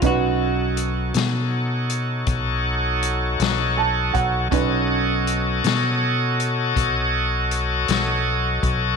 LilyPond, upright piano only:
\new Staff \with { instrumentName = "Upright piano" } { \time 12/8 \key b \mixolydian \tempo 4. = 53 << { r1 r4 a''8 fis''8 | r1. | } \\ { <cis' dis' b'>1. | <cis' dis' b'>1. | } >> }